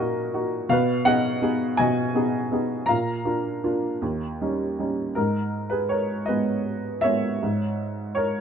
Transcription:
0.00 0.72 A#2 medium
0.00 0.34 A#3 soft
0.00 0.34 D#4 soft
0.00 0.34 F#4 medium
0.00 0.40 A#4 medium
0.00 0.72 D5 medium
0.00 0.72 D#5 medium
0.00 0.70 F5 medium
0.00 0.72 F#5 medium
0.34 0.63 A#3 soft
0.34 0.63 D#4 soft
0.34 0.63 F#4 medium
0.69 1.78 B2 medium
0.69 1.04 B4 medium
0.69 1.07 F5 medium
1.05 1.40 B3 soft
1.05 1.41 D#4 soft
1.05 1.41 G#4 medium
1.05 1.75 D#5 medium
1.05 1.80 F#5 loud
1.42 2.00 B3 medium
1.42 2.00 D#4 soft
1.42 2.00 G#4 medium
1.77 2.85 B2 medium
1.77 2.85 D#5 medium
1.77 2.91 G#5 medium
2.15 2.50 B3 soft
2.15 2.50 D#4 soft
2.15 2.51 G#4 medium
2.52 2.81 B3 soft
2.52 2.81 D#4 soft
2.52 2.81 G#4 soft
2.86 3.98 A#2 medium
2.86 4.36 F5 medium
2.86 4.35 A#5 medium
3.25 3.62 A#3 soft
3.25 3.62 D4 soft
3.25 3.63 F4 soft
3.64 3.94 A#3 soft
3.64 3.94 D4 soft
3.64 3.94 F4 soft
4.02 5.12 D#2 medium
4.41 4.77 G3 soft
4.41 4.77 C#4 soft
4.41 4.78 D#4 soft
4.79 5.09 G3 soft
4.79 5.09 C#4 soft
4.79 5.09 D#4 soft
5.15 7.37 G#2 soft
5.15 5.69 D#4 soft
5.15 5.73 A#4 medium
5.70 5.89 G#4 soft
5.70 5.90 B4 medium
5.89 6.25 A#4 soft
5.89 6.28 C#5 medium
6.26 7.00 G#3 soft
6.26 7.01 B3 soft
6.26 6.98 B4 medium
6.26 6.97 D#5 medium
7.01 7.40 G#3 soft
7.01 7.40 A#3 soft
7.01 7.40 B3 soft
7.01 8.13 C#5 medium
7.01 8.19 E5 medium
7.43 8.41 G#2 medium
8.15 8.41 A#4 medium
8.15 8.41 C#5 medium

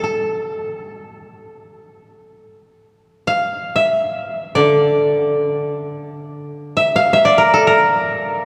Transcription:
0.04 1.94 A4 soft
3.27 3.82 F5 medium
3.76 5.25 E5 medium
4.55 7.94 D3 soft
4.55 6.72 D5 medium
6.77 7.02 E5 medium
6.96 7.19 F5 medium
7.13 8.45 E5 medium
7.25 8.45 D5 medium
7.38 7.60 A#4 medium
7.54 7.73 A4 medium
7.67 8.45 A#4 medium

